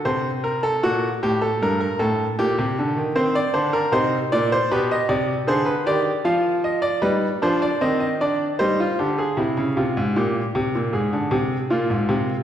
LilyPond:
<<
  \new Staff \with { instrumentName = "Grand piano" } { \time 4/4 \key c \minor \tempo 4 = 77 << { r1 | c''16 d''16 c''16 bes'16 c''8 d''16 c''16 b'16 ees''16 d''8 c''16 b'16 d''8 | f''8 ees''16 d''16 b'8 c''16 d''16 ees''16 ees''16 d''8 c''4 | r1 | } \\ { c''8 bes'16 a'16 fis'8 g'16 a'16 bes'16 bes'16 a'8 g'4 | c'8 d'8 ees'4 g'4 aes'8 g'8 | f'4 ees'8 d'8 c'8 d'8 ees'16 f'16 g'16 aes'16 | e'8 f'8 g'4 aes'4 f'4 | } >> }
  \new Staff \with { instrumentName = "Grand piano" } { \clef bass \time 4/4 \key c \minor c4 bes,8 a,8 g,8 a,8 bes,16 c16 d16 ees16 | ees8 d8 c8 bes,8 b,8 c8 d8 ees8 | f4 g8 f8 ees4 g8 d8 | c16 des16 c16 aes,16 bes,8 c16 bes,16 aes,16 d16 c8 bes,16 aes,16 c8 | }
>>